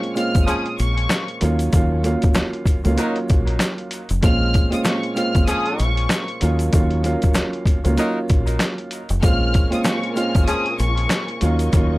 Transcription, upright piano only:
Already playing: A#2 G#3 C4 C#4 F4
0.14 A#2 G#3 C4 C#4 F4
1.41 D#2 F#3 A#3 C#4 F4
1.72 D#2 F#3 A#3 C#4 F4
2.03 D#2 F#3 A#3 C#4 F4
2.84 D#2 F#3 A#3 C#4 F4
2.96 D#2 F#3 A#3 C#4 F4
4.21 A#2 G#3 C4 C#4 F4
4.69 A#2 G#3 C4 C#4 F4
5.15 A#2 G#3 C4 C#4 F4
6.41 D#2 F#3 A#3 C#4 F4
6.73 D#2 F#3 A#3 C#4 F4
7.03 D#2 F#3 A#3 C#4 F4
7.84 D#2 F#3 A#3 C#4 F4
7.96 D#2 F#3 A#3 C#4 F4
9.21 A#2 G#3 C4 C#4 F4
9.69 A#2 G#3 C4 C#4 F4
10.14 A#2 G#3 C4 C#4 F4
11.41 D#2 F#3 A#3 C#4 F4
11.73 D#2 F#3 A#3 C#4 F4

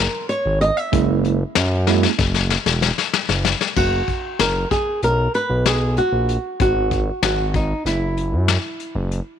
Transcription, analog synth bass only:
0.45 G#1
0.93 F#1
1.56 F#2
2.19 F#1
2.66 E1
3.29 F#1
3.76 F#1
4.40 F#1
5.03 B1
5.50 B1
6.12 A#1
6.60 G#1
7.22 G#1
7.85 F#1
8.32 F#2
8.95 F#1

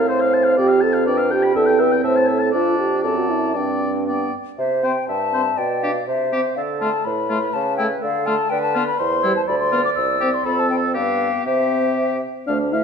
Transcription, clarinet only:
Already playing: C4
0.58 C4
1.07 D4
1.54 C4
2.53 D4
3.05 C4
3.55 C4
4.08 B3
4.58 C5
5.09 E5
5.57 D5
6.07 C5
6.57 A4
7.07 B4
8.03 A4
8.50 B4
8.99 C5
9.48 D5
10.45 A4
10.95 B4
11.46 C5
12.48 A3
12.73 A3

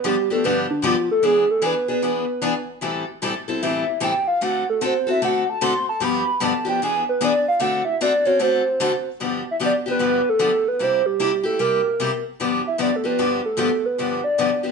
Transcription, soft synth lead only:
0.06 G4
0.32 A4
0.45 B4
0.71 D4
0.86 F4
1.11 A4
1.25 G#4
1.51 A4
1.66 B4
3.62 E5
4.04 G5
4.28 F5
4.44 F#5
4.70 A4
4.86 C5
5.10 E5
5.25 F#5
5.50 A5
5.64 C6
5.89 A5
6.04 B5
6.44 A5
6.69 G5
6.84 G#5
7.09 B4
7.24 D5
7.48 F5
7.62 F#5
7.85 E5
8.02 D5
8.26 C#5
8.42 C5
9.51 E5
9.65 D5
9.90 B4
10.29 A4
10.68 B4
10.83 C5
11.06 G4
11.45 A4
11.60 A#4
12.67 E5
12.82 D5
12.96 A4
13.06 B4
13.45 A4
13.86 B4
14.24 D5

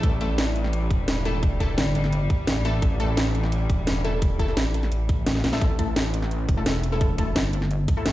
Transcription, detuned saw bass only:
0.03 A1
0.91 E1
2.82 A1
3.70 E1
4.57 A1
4.92 A1
5.61 A1
6.49 E1

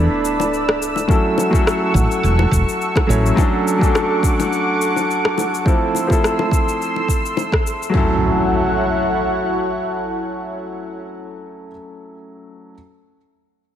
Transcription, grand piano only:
Already playing: A3 B3 D4 E4 B4
1.08 F#3 A3 C#4 E4 A4
1.50 F#3 A3 C#4 E4
1.56 A4
3.07 F#3 A3 C#4 E4 C#5
3.36 F#3 A3 C#4 D4 A4
3.79 F#3 A3 C#4 D4
3.84 A4
5.65 F3 A3 C4 E4 A4
6.07 F3 A3 C4
6.11 E4 A4
7.89 F#3 A3
7.94 C#4 E4 A4

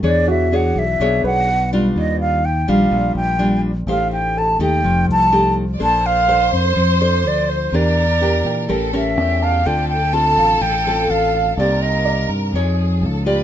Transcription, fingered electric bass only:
0.03 E2
0.76 B1
1.00 B1
1.24 B1
1.96 D#2
2.68 A#1
2.91 A#1
3.15 A#1
3.87 A1
4.59 D#2
4.83 F1
5.07 C2
5.81 A#1
6.53 F2
6.76 F2
7.24 D2
7.72 E2
8.44 A#2
8.70 A1
9.17 E2
9.66 D2
10.37 A1
10.61 A1
11.09 A1
11.57 C2
12.29 G2
12.53 F2
13.02 C#2

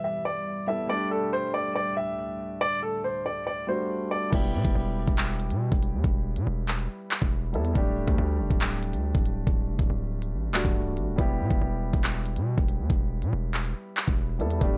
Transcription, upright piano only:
0.04 E5
0.25 D5
0.68 E5
0.89 D5
1.11 A4
1.33 C5
1.54 D5
1.75 D5
1.97 E5
2.61 D5
2.82 A4
3.04 C5
3.26 D5
3.47 D5
3.68 C5
4.11 D5

